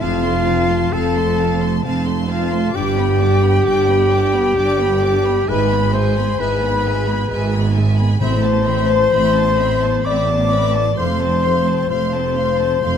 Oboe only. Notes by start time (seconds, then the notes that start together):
0.01 F4
0.92 A4
2.31 F4
2.75 G4
5.49 B4
5.93 C5
6.41 B4
8.22 C5
10.06 D5
10.97 C5
11.91 C5